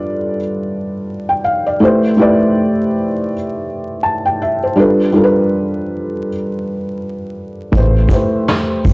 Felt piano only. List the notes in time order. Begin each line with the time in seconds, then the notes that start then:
Already playing: G3 D4 F4 A4 B4 D5 E5
1.29 G5
1.44 F5
1.67 D5
1.80 A3 E4 G4 B4
1.85 C5
2.17 A3 E4 G4 B4
2.22 D5
4.03 A5
4.26 G5
4.42 E5
4.63 C5
4.76 G3 D4 F4 A4
4.80 B4
5.12 G3 D4 F4 A4
5.17 A#4
5.24 B4
7.72 A3 E4 G4 B4
7.77 C5
8.08 A3 E4 G4 B4
8.13 C5